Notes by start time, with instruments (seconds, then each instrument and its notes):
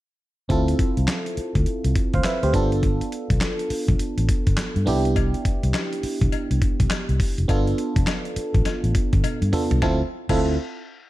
0.49 fingered electric bass D2, fm electric piano C4 E4 F4 A4, kick, closed hi-hat
0.68 closed hi-hat
0.79 kick, closed hi-hat
0.97 fingered electric bass C2, closed hi-hat
1.08 snare, clap, closed hi-hat
1.26 closed hi-hat
1.37 muted fingered electric bass stroke, closed hi-hat
1.55 fingered electric bass D2, kick, closed hi-hat
1.66 muted fingered electric bass stroke, closed hi-hat
1.84 fingered electric bass C2, closed hi-hat
1.95 kick, closed hi-hat
2.13 fingered electric bass D2, fm electric piano C5 F5, kick, closed hi-hat
2.24 fm electric piano B4 E5, muted fingered electric bass stroke, snare, clap, closed hi-hat
2.43 fingered electric bass D2, fm electric piano G4 C5, closed hi-hat
2.53 fingered electric bass G1, fm electric piano B3 D4 F4 A4, kick, closed hi-hat
2.72 closed hi-hat
2.83 kick, closed hi-hat
3.01 closed hi-hat
3.12 closed hi-hat
3.30 fingered electric bass B1, kick, closed hi-hat
3.41 snare, clap, closed hi-hat
3.59 closed hi-hat
3.70 muted fingered electric bass stroke, open hi-hat
3.88 fingered electric bass B1, kick, closed hi-hat
3.99 muted fingered electric bass stroke, closed hi-hat
4.18 fingered electric bass A1, closed hi-hat
4.29 kick, closed hi-hat
4.47 fingered electric bass G1, kick, closed hi-hat
4.57 snare, clap, closed hi-hat
4.76 fingered electric bass G2, closed hi-hat
4.86 fingered electric bass C2, fm electric piano B3 D4 E4 G4, open hi-hat
5.05 closed hi-hat
5.16 kick, closed hi-hat, cowbell
5.34 closed hi-hat
5.45 kick, closed hi-hat
5.63 fingered electric bass C2, closed hi-hat
5.74 snare, clap, closed hi-hat, cowbell
5.93 closed hi-hat
6.03 muted fingered electric bass stroke, open hi-hat
6.21 fingered electric bass B1, kick, closed hi-hat
6.32 closed hi-hat, cowbell
6.51 fingered electric bass C2, closed hi-hat
6.62 kick, closed hi-hat
6.80 fingered electric bass B1, kick, closed hi-hat
6.90 muted fingered electric bass stroke, snare, clap, closed hi-hat, cowbell
7.09 fingered electric bass C2, closed hi-hat
7.20 kick, open hi-hat
7.38 fingered electric bass F1, closed hi-hat
7.48 fingered electric bass G1, fm electric piano B3 D4 F4 A4, kick, closed hi-hat, cowbell
7.67 closed hi-hat
7.78 closed hi-hat
7.96 fingered electric bass F1, kick, closed hi-hat
8.07 snare, clap, closed hi-hat, cowbell
8.25 closed hi-hat
8.36 muted fingered electric bass stroke, closed hi-hat
8.54 fingered electric bass A1, kick, closed hi-hat
8.65 muted fingered electric bass stroke, snare, closed hi-hat, cowbell
8.84 fingered electric bass A1, closed hi-hat
8.95 kick, closed hi-hat
9.13 fingered electric bass G1, kick, closed hi-hat
9.24 closed hi-hat, high tom, cowbell
9.42 fingered electric bass G2, closed hi-hat
9.52 fm electric piano B3 D4 F4 A4, mid tom, open hi-hat
9.71 fingered electric bass C2, closed hi-hat, floor tom
9.82 fingered electric bass D2, fm electric piano C4 E4 F4 A4, kick, snare, cowbell
10.29 fingered electric bass D2, fm electric piano C4 E4 F4 A4, kick, crash, cowbell